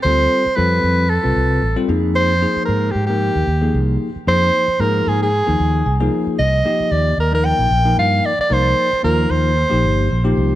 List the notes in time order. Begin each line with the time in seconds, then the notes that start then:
0.03 D2 G3 C4 F4 A4 C5
0.46 muted fretless electric bass stroke
0.56 F2 G3 C4 F4 A4 B4
0.84 F2
1.09 A4
1.23 C2 G3 C4 F4 B4
1.36 C2
1.62 A1
1.76 G3 C4 F4 A4
1.88 F2 F3 A#3 D#4 G#4
2.16 C5
2.41 F3 A#3 D#4 G#4
2.56 muted fretless electric bass stroke
2.65 G#2 A#4
2.91 G4
2.95 G#2
3.06 F3 A#3 D#4 G4 A#4
3.36 D#2
3.47 D#2
3.61 F3 A#3 D#4 G#4
3.74 C2
4.16 muted fretless electric bass stroke
4.27 F2 F3 A#3 D#4 G#4 C5
4.68 muted fretless electric bass stroke
4.80 G#2 F3 A#3 D#4 G#4 A#4
5.07 G#2 G#4
5.22 G#4
5.47 D#2 F3 A#3 D#4 G#4
5.60 D#2
5.86 C2 G#5
6.00 F3 A#3 D#4 G#4
6.27 muted fretless electric bass stroke
6.39 C2 D#5
6.65 F3 A#3 D#4 G4
6.80 muted fretless electric bass stroke
6.92 D#2 D5
7.18 D#2 A#4
7.32 F3 A#3 D#4 A#4
7.45 G5
7.59 A#1
7.71 A#1
7.85 F3 A#3 D#4 A#4
7.97 G2 F5
8.26 D5
8.39 D5, muted fretless electric bass stroke
8.50 C2 F3 A#3 D#4 A#4 C5
8.93 muted fretless electric bass stroke
9.03 D#2 F3 A#3 D#4 F4 A#4
9.30 D#2 C5
9.70 A#1 F3 A#3 D#4 G4
9.84 G1
10.11 A#1
10.24 F3 A#3 D#4 G4
10.37 C2